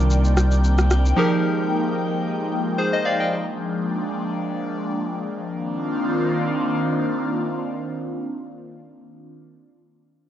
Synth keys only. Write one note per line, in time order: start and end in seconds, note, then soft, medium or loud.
0.00 1.13 C3 medium
0.00 1.13 G3 medium
0.00 1.13 D4 medium
0.00 1.13 D#4 medium
0.00 1.14 F4 medium
0.00 1.14 A#4 medium
1.16 2.74 F3 medium
1.16 2.75 D#4 medium
1.16 2.75 G4 medium
1.16 2.75 G#4 medium
1.16 2.76 A#4 medium
2.78 2.92 G#4 medium
2.78 2.92 C5 medium
2.93 3.05 C5 medium
2.93 3.04 D#5 medium
3.05 3.19 D5 medium
3.05 3.19 F5 medium
3.20 3.46 D#5 medium
3.20 3.45 G5 medium